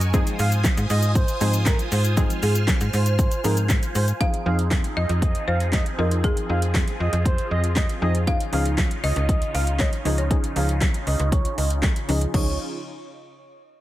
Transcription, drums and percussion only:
0.01 closed hi-hat medium
0.01 shaker medium
0.14 kick loud
0.14 closed hi-hat medium
0.14 shaker medium
0.27 closed hi-hat medium
0.27 shaker medium
0.39 open hi-hat medium
0.39 shaker medium
0.52 closed hi-hat medium
0.52 shaker medium
0.64 kick loud
0.64 snare loud
0.64 clap loud
0.64 closed hi-hat medium
0.64 shaker medium
0.77 closed hi-hat medium
0.77 shaker medium
0.90 open hi-hat medium
0.90 shaker soft
1.03 closed hi-hat medium
1.03 shaker medium
1.15 kick loud
1.15 closed hi-hat medium
1.15 shaker medium
1.28 closed hi-hat medium
1.28 shaker medium
1.41 open hi-hat medium
1.41 shaker medium
1.54 closed hi-hat medium
1.54 shaker medium
1.65 kick loud
1.65 snare medium
1.65 clap loud
1.65 closed hi-hat medium
1.65 shaker medium
1.79 closed hi-hat medium
1.79 shaker medium
1.92 open hi-hat medium
1.92 shaker medium
2.05 closed hi-hat medium
2.05 shaker medium
2.17 kick loud
2.17 closed hi-hat medium
2.17 shaker medium
2.30 closed hi-hat medium
2.30 shaker medium
2.43 open hi-hat medium
2.43 shaker medium
2.55 closed hi-hat medium
2.55 shaker medium
2.67 kick loud
2.67 snare loud
2.67 clap loud
2.67 closed hi-hat medium
2.67 shaker medium
2.81 closed hi-hat medium
2.81 shaker medium
2.93 open hi-hat medium
2.93 shaker soft
3.06 closed hi-hat medium
3.06 shaker medium
3.19 kick loud
3.19 closed hi-hat medium
3.19 shaker medium
3.31 closed hi-hat medium
3.31 shaker medium
3.44 open hi-hat medium
3.44 shaker medium
3.57 closed hi-hat medium
3.57 shaker medium
3.69 kick loud
3.69 snare medium
3.69 clap loud
3.69 closed hi-hat medium
3.69 shaker medium
3.83 closed hi-hat soft
3.83 shaker soft
3.95 open hi-hat medium
3.95 shaker medium
4.08 closed hi-hat medium
4.08 shaker medium
4.21 kick loud
4.21 closed hi-hat medium
4.34 closed hi-hat medium
4.59 closed hi-hat medium
4.71 kick loud
4.71 snare loud
4.71 clap loud
4.71 closed hi-hat medium
4.84 closed hi-hat medium
5.09 closed hi-hat medium
5.22 kick loud
5.22 closed hi-hat medium
5.35 closed hi-hat medium
5.60 closed hi-hat medium
5.72 kick loud
5.72 snare medium
5.72 clap loud
5.72 closed hi-hat medium
5.86 closed hi-hat soft
6.11 closed hi-hat medium
6.24 kick loud
6.24 closed hi-hat medium
6.37 closed hi-hat medium
6.62 closed hi-hat medium
6.74 kick loud
6.74 snare loud
6.74 clap loud
6.74 closed hi-hat medium
6.88 closed hi-hat medium
7.13 closed hi-hat medium
7.26 kick loud
7.26 closed hi-hat medium
7.38 closed hi-hat medium
7.64 closed hi-hat medium
7.76 kick loud
7.76 snare medium
7.76 clap loud
7.76 closed hi-hat medium
7.89 closed hi-hat soft
8.15 closed hi-hat medium
8.27 kick loud
8.27 closed hi-hat medium
8.40 closed hi-hat medium
8.53 open hi-hat medium
8.65 closed hi-hat medium
8.78 kick loud
8.78 snare loud
8.78 clap loud
8.78 closed hi-hat medium
8.91 closed hi-hat medium
9.04 open hi-hat medium
9.16 closed hi-hat medium
9.29 kick loud
9.29 closed hi-hat medium
9.42 closed hi-hat medium
9.55 open hi-hat medium
9.67 closed hi-hat medium
9.79 kick loud
9.79 snare medium
9.79 clap loud
9.79 closed hi-hat medium
9.93 closed hi-hat soft
10.05 open hi-hat medium
10.18 closed hi-hat medium
10.31 kick loud
10.31 closed hi-hat medium
10.44 closed hi-hat medium
10.56 open hi-hat medium
10.69 closed hi-hat medium
10.81 kick loud
10.81 snare loud
10.81 clap loud
10.81 closed hi-hat medium
10.94 closed hi-hat medium
11.07 open hi-hat medium
11.20 closed hi-hat medium
11.32 kick loud
11.32 closed hi-hat medium
11.45 closed hi-hat medium
11.58 open hi-hat medium
11.70 closed hi-hat medium
11.82 kick loud
11.82 snare medium
11.82 clap loud
11.82 closed hi-hat medium
11.96 closed hi-hat soft
12.09 open hi-hat medium
12.21 closed hi-hat medium
12.34 kick loud
12.34 crash medium

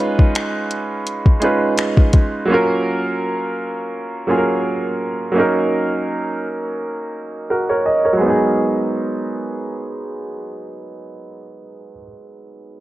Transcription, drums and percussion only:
0.19 kick medium
0.35 finger snap loud
0.35 closed hi-hat medium
0.71 closed hi-hat medium
1.07 closed hi-hat medium
1.26 kick medium
1.42 closed hi-hat medium
1.78 finger snap loud
1.78 closed hi-hat medium
1.97 kick loud
2.13 kick medium
2.13 closed hi-hat medium

